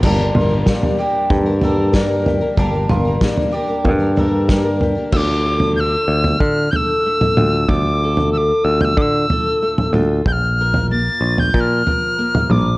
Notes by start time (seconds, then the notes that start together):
0.03 G1 G2 D3 G3 A#3 D4 G4 A#4, kick, floor tom, crash
0.19 G3 A#3 D4 A#4
0.35 G1 F4 A#4, floor tom, mid tom
0.50 G3 A#3 D4 A#4
0.66 G2 D3 G3 A#3 D4 A#4, kick, snare, mid tom
0.83 floor tom
0.98 G3 A#3 D4 G4 A#4
1.30 G2 D3, kick, floor tom
1.46 G3 A#3 D4 A#4
1.61 G3 A#3 D4 A4 A#4, floor tom
1.93 G2 D3 G3 A#3 D4 A#4, kick, snare
2.09 G3 A#3 D4 A#4
2.26 G4, floor tom
2.41 G3 A#3 D4 A#4
2.57 G1 G2 D3 G3 A#3 D4 G4 A#4, kick, floor tom
2.73 G3 A#3 D4 A#4
2.89 G1 F4 A#4, floor tom, mid tom
3.05 G3 A#3 D4 A#4
3.21 G2 D3 G3 A#3 D4 A#4, kick, snare, mid tom
3.38 floor tom
3.52 G3 A#3 D4 G4 A#4
3.68 G3 A#3 D4 A#4
3.85 G2 D3, kick, floor tom
4.00 G3 A#3 D4 A#4
4.16 G3 A#3 D4 A4 A#4, floor tom
4.48 G2 D3 G3 A#3 D4 A#4, kick, snare
4.63 G3 A#3 D4 A#4
4.81 G4, floor tom
4.95 G3 A#3 D4 A#4
5.12 D2 D3 F4 E6, kick, floor tom, crash
5.16 D6
5.46 A4
5.60 floor tom
5.76 A3 G6
5.80 E6
6.08 D2 F4
6.24 floor tom
6.40 A2 D3 F6, kick
6.71 A4 G6, floor tom
6.76 E6
7.06 A3
7.21 floor tom, mid tom
7.37 D2 F4, mid tom
7.69 D2 D3 F4 D6, kick, floor tom
8.04 A4
8.17 floor tom
8.32 A3 E6
8.37 D6
8.64 D2 F4 E6
8.81 E6 G6, floor tom
8.97 A2 D3 D6, kick
9.02 E6
9.30 A4, floor tom
9.62 A3
9.78 floor tom, mid tom
9.93 D2 F4, mid tom
10.26 A#1 A#2 F4 G6, kick, floor tom
10.32 F6
10.61 A#4
10.74 floor tom
10.91 A#3 A6
11.21 A#1 F4
11.38 G6, floor tom
11.54 A#2 F3 G6, kick
11.60 F6
11.87 A#4, floor tom
12.19 A#3
12.35 floor tom, mid tom
12.50 A#1 F4 D6, mid tom